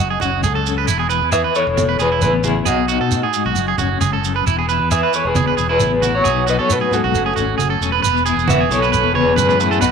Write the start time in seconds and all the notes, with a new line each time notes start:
Already playing: F#1 D#5 F#5
0.00 F#2
0.10 G#4
0.20 F#1 C#4 F#4, low conga, shekere
0.42 C#2 G#4 A4, high conga, shekere
0.55 A4
0.65 C#4, muted conga, shekere
0.78 B4
0.87 E1 E2 E4, muted conga, shekere
0.99 G#4
1.09 E4 B4, muted conga, shekere
1.22 E2
1.32 G#4 B4 E5, shekere
1.44 B4
1.55 E4 A4 C#5, shekere
1.67 E1
1.77 B2, muted clean electric guitar stroke, muted conga, high conga, shekere
1.89 B4
1.99 E1 E3 G#4 B4, shekere
2.12 E4
2.21 A1 G#4 B4, high conga, shekere
2.26 B3
2.44 E4 G#4, muted clean electric guitar stroke, muted conga, high conga, shekere
2.65 B1 B2 D#4 F#4 G#4, shekere
2.88 D#4 F#4, muted conga, shekere
3.01 B2 A4
3.11 A2, shekere
3.23 G#4
3.33 G#2, shekere
3.45 B1 F#4
3.55 F#1 F#2, muted conga, shekere
3.68 G#4
3.78 F#1 C#4 F#4, low conga, shekere
4.00 F#1 G#2 G#4, high conga, shekere
4.13 A4
4.24 F#2, muted conga, shekere
4.36 B4
4.46 E1 E2 E4, muted conga, shekere
4.59 G#4
4.68 E4 B4, muted conga, shekere
4.79 E2
4.91 G#4 B4 E5, shekere
5.03 B4
5.13 E4 A4 C#5, shekere
5.25 E1 G#4 B4
5.35 B2 G#4, muted conga, high conga, shekere
5.47 B4
5.57 E1 E3 G#4, shekere
5.69 E4 G#4 B4
5.80 A1 B3, high conga, shekere
6.02 E4 F#4, muted conga, high conga, shekere
6.15 F#4 C#5
6.24 B1 B2 G#4, muted conga, shekere
6.28 F#3 B3 D#4 F#4
6.47 D#4 F#4 B4 D#5, shekere
6.59 B2 A4 C#5
6.70 A2 F#4 B4, shekere
6.81 G#4
6.91 G#2 F#4 A4, low conga, shekere
7.04 B1 F#4
7.14 F#1 F#2 F#3 A3 C#4, muted conga, shekere
7.26 G#4
7.36 G#1 C#4 F#4, low conga, shekere
7.58 F#1 C#4 G#4, high conga, shekere
7.70 A4
7.81 E1 C#4, muted conga, shekere
7.92 B4
8.02 E1 E2 B4, muted conga, shekere
8.07 B3
8.17 shekere
8.26 E4 G#4, muted conga, shekere
8.37 E1, shekere
8.48 B3 F#4 B4 E5, high conga, shekere
8.60 G#4
8.69 B1 E3 E4 A4 C#5, shekere
8.82 B4, shekere
8.92 B4, muted conga, shekere
9.03 E1
9.14 B2 G#4 B4 C#5, high conga
9.36 F#2 G#2 G#4 B4, high conga, shekere
9.49 B4, shekere
9.59 A2 E4 G#4, muted conga, shekere
9.71 A4, shekere
9.81 B1 B2 B3 D#4 F#4 B4, shekere